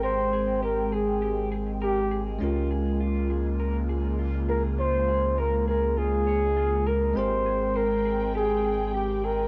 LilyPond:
<<
  \new Staff \with { instrumentName = "Muted trumpet" } { \time 4/4 \key aes \major \tempo 4 = 101 c''4 bes'8 aes'4 r8 g'8. r16 | r2. r8 bes'8 | c''4 bes'8 bes'8 aes'4. bes'8 | c''4 bes'4 aes'4 g'8 bes'8 | }
  \new Staff \with { instrumentName = "Clean electric guitar" } { \time 4/4 \key aes \major bes'16 r16 aes'8 g'8 aes'8 g'8 aes'16 r16 bes'16 r16 aes'8 | f'8 aes'8 f'8 aes'16 r16 bes'16 r16 aes'8 f'8 aes'8 | f'8 aes'16 r16 bes'16 r16 aes'8 f'8 des''16 r16 f'16 r16 bes'16 r16 | g'8 aes'8 c''8 aes'8 g'8 aes'8 g'8 aes'8 | }
  \new Staff \with { instrumentName = "Tine electric piano" } { \time 4/4 \key aes \major <aes c' bes' g''>1 | <aes des' f' bes'>1~ | <aes des' f' bes'>1 | <aes c' bes' g''>1 | }
  \new Staff \with { instrumentName = "Analog synth pad" } { \time 4/4 \key aes \major << { <c' g''>1 | <des bes f'>1~ | <des bes f'>1 | <c' g''>1 | } \\ { aes1~ | aes1~ | aes1~ | aes1 | } >> }
  \new Staff \with { instrumentName = "Sub bass" } { \clef bass \time 4/4 \key aes \major aes,,1 | des,1~ | des,1 | aes,,1 | }
>>